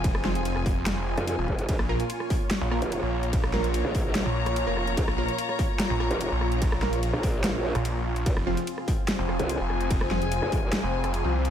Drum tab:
RD |x---x---x---x---|x---x---x---x---|x---x---x---x---|x---x---x---x---|
HH |x--xx-o-x--xx--x|x--xx-o-x--xx--x|x--xx-o-x--xx--x|x--xx-o-x--xx--x|
SD |-ro--r--o--r----|-r---r--o-r-----|-ro--r--o--r--r-|-r---r--o-r---r-|
BD |o-----o-------o-|o-----o---------|o-----o---------|o-----o---------|

RD |x---x---x---x---|x---x---x---x---|x---x---x---x---|
HH |x--xx-o-x--xx--x|x--xx-o-x--xx--x|x--xx-o-x--xx--x|
SD |-ro--r--o--r----|-r---r--o-r---r-|-ro--r--o--r----|
BD |o-----o---------|o-----o---------|o-----o---------|